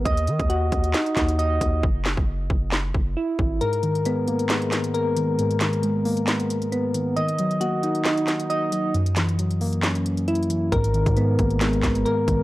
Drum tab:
HH |x--x--x--x--x-----x--x--x--x--x--x--x-----x-----|------------------------------------------------|x--x--x--x--x-----x--x--x--x--x--x--x-----x-----|x--x--x--x--x-----o--x--x--x--x--x--x-----x-----|
CP |------------------------x-----x-----------------|------x-----------------x-----------------------|------------------------x-----x-----------------|------x-----------------x-----------------------|
SD |------------------------o-----o-----------------|------o-----------------o-----------------------|------------------------o-----o-----------------|------o-----------------o-----------------------|
BD |o--------o--------o-----------o-----------o-----|o--------o--------o-----------o-----------o-----|------------------------------------------------|------------------------------------------------|

HH |x--x--x--x--x-----x--x--x--x--x--x--x-----x-----|x--x--x--x--x--x--o--x--x--x--x--x--x-x-x-x-----|x--x--x--x--x-----x--x--x--x--x--x--x-----x-----|
CP |------------------------x-----x-----------------|------x-----------------x-----------------------|------------------------x-----x-----------------|
SD |------------------------o-----o-----------------|------o-----------------o-----------------------|------------------------o-----o-----------------|
BD |------------------------------------------------|------------------------------------------------|o--------o--------o-----------o-----------o-----|